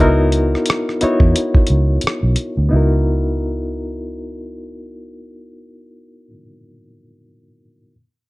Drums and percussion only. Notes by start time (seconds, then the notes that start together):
0.32 closed hi-hat
0.55 cross-stick
0.66 closed hi-hat
0.70 cross-stick
0.89 cross-stick
1.01 closed hi-hat
1.20 kick
1.36 closed hi-hat
1.55 kick
1.67 closed hi-hat
2.01 closed hi-hat
2.07 cross-stick
2.36 closed hi-hat